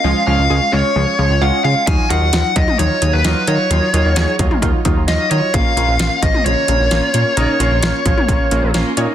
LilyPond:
<<
  \new Staff \with { instrumentName = "Lead electric guitar" } { \time 4/4 \key ees \minor \tempo 4 = 131 f''8 f''4 des''4. ges''8 f''8 | aes''8 ges''4 ees''8 des''8. ces''8. des''8~ | des''4. r4. ees''8 des''8 | f''4. ees''8 des''2~ |
des''2. r4 | }
  \new Staff \with { instrumentName = "Synth keys" } { \time 4/4 \key ees \minor <aes des' f'>8 <aes des' f'>8 <aes des' f'>8 <aes des' f'>8 <aes des' f'>8 <aes des' f'>8 <aes des' f'>8 <aes des' f'>8 | <ges ees' f'>8 <ges ees' f'>8 <ges ees' f'>8 <ges ees' f'>8 <ges ees' f'>8 <ges ees' aes'>8 <ges ees' f'>8 <ges ees' f'>8 | <ges ees' f'>8 <ges ees' f'>8 <ges ees' aes'>8 <ges ees' f'>8 <ges ees' f'>8 <ges ees' f'>8 <ges ees' f'>8 <ges ees' f'>8 | <bes des' f'>8 <bes des' f'>8 <bes des' f'>8 <bes des' f'>8 <bes des' f'>8 <bes des' f'>8 <bes des' f'>8 <bes des' f'>8 |
<bes des' ees'>8 <bes des' f'>8 <bes des' f'>8 <bes des' f'>8 <bes des' f'>8 <bes des' f'>8 <bes des' f'>8 <bes des' ees'>8 | }
  \new Staff \with { instrumentName = "Synth arpeggio sound" } { \clef bass \time 4/4 \key ees \minor f8 f8 aes'8 aes8 f8 f8 f''8 f''8 | ees8 ees8 f'8 ges8 ees8 ees8 ees''8 ees''8 | ees8 ees8 f'8 ges8 ees8 ees8 ees''8 ees''8 | des8 des8 f'8 f8 des8 des8 des''8 des''8 |
des8 des8 f'8 f8 des8 des8 des''8 des''8 | }
  \new Staff \with { instrumentName = "Analog synth bass" } { \clef bass \time 4/4 \key ees \minor des,16 r16 des,16 des,16 des,16 r16 des,16 r16 des,16 r16 des,16 des,16 des,16 r16 des16 r16 | ees,16 r16 ees,16 ees,16 ees,16 r16 ees,16 r16 ees,16 r16 ees,16 ees,16 ees,16 r16 ees16 r16 | ees,16 r16 ees,16 ees,16 ees,16 r16 ees,16 r16 ees,16 r16 ees,16 ees,16 ees,16 r16 ees16 r16 | bes,,16 r16 bes,,16 bes,,16 bes,,16 r16 bes,,16 r16 bes,,16 r16 bes,,16 bes,,16 bes,,16 r16 bes,16 r16 |
bes,,16 r16 bes,,16 bes,,16 bes,,16 r16 bes,,16 r16 bes,,16 r16 bes,,16 bes,,16 bes,,16 r16 bes,16 r16 | }
  \new DrumStaff \with { instrumentName = "Drums" } \drummode { \time 4/4 r4 r4 r4 r4 | <hh bd>8 hh8 <hh sn>8 <hh bd>16 toml16 hh8 hh8 <hh sn>8 hh8 | hh8 hh8 <hh sn>8 <hh bd>16 toml16 <hh bd>8 <hh bd>8 <hh sn>8 hh8 | <hh bd>8 hh8 <hh sn>8 <hh bd>16 toml16 hh8 hh8 <hh sn>8 hh8 |
hh8 hh8 <hh sn>8 <hh bd>16 toml16 <hh bd>8 hh8 <hh sn>8 hh8 | }
>>